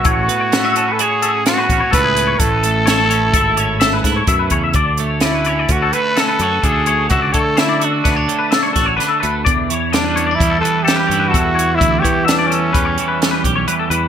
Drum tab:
HH |xxxxxxxxxx|xxxxxxxxxx|xxxxxxxxxx|xxxxxxxxxx|
SD |--o---o---|--o---oo--|--o---o---|--o-o-ooo-|
BD |o------oo-|o---o--ooo|o---o---o-|oo--o--o--|

HH |xxxxxxxxxx|xxxxxxxxxx|
SD |--o---o---|--o---o---|
BD |o---o---o-|oo--o--o--|